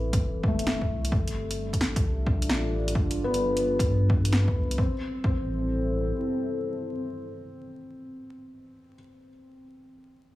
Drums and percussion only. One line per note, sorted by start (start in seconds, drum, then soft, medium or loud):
0.13 kick loud
0.13 closed hi-hat medium
0.43 kick loud
0.59 closed hi-hat medium
0.67 snare loud
0.82 kick medium
1.05 closed hi-hat medium
1.12 kick loud
1.28 closed hi-hat soft
1.51 closed hi-hat medium
1.73 kick medium
1.73 closed hi-hat soft
1.81 snare loud
1.96 kick loud
1.96 closed hi-hat medium
2.26 kick loud
2.42 closed hi-hat medium
2.49 snare loud
2.88 closed hi-hat medium
2.95 kick loud
3.11 closed hi-hat soft
3.34 closed hi-hat soft
3.57 closed hi-hat soft
3.79 kick loud
3.79 closed hi-hat soft
4.10 kick loud
4.25 closed hi-hat soft
4.33 snare medium
4.48 kick medium
4.71 closed hi-hat soft
4.78 kick loud
5.24 kick loud